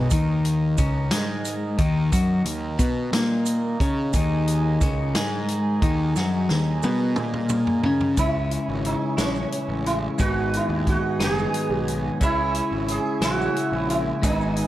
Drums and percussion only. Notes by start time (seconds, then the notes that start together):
0.10 kick, closed hi-hat, maracas
0.45 closed hi-hat
0.78 kick, closed hi-hat, maracas
1.11 snare, closed hi-hat
1.45 closed hi-hat, maracas
1.78 kick, closed hi-hat
2.12 kick, closed hi-hat, maracas
2.45 closed hi-hat
2.79 kick, closed hi-hat, maracas
3.13 snare, closed hi-hat
3.46 closed hi-hat, maracas
3.80 kick, closed hi-hat
4.13 kick, closed hi-hat, maracas
4.48 closed hi-hat
4.81 kick, closed hi-hat, maracas
5.15 snare, closed hi-hat
5.48 closed hi-hat
5.82 kick, closed hi-hat
6.16 snare, maracas
6.49 snare, maracas
6.83 high tom, maracas
7.16 mid tom, maracas
7.34 mid tom
7.49 mid tom, maracas
7.67 floor tom
7.84 floor tom
8.01 floor tom
8.17 kick, closed hi-hat, maracas
8.51 closed hi-hat
8.85 closed hi-hat
9.18 snare, closed hi-hat, maracas
9.35 maracas
9.52 closed hi-hat
9.86 closed hi-hat
10.19 kick, closed hi-hat, maracas
10.53 closed hi-hat
10.87 kick, closed hi-hat
11.20 snare, closed hi-hat, maracas
11.38 maracas
11.54 closed hi-hat
11.88 closed hi-hat
12.21 kick, closed hi-hat, maracas
12.55 closed hi-hat
12.88 closed hi-hat
13.22 snare, closed hi-hat, maracas
13.41 maracas
13.56 closed hi-hat
13.90 closed hi-hat
14.23 kick, closed hi-hat, maracas
14.41 maracas
14.56 closed hi-hat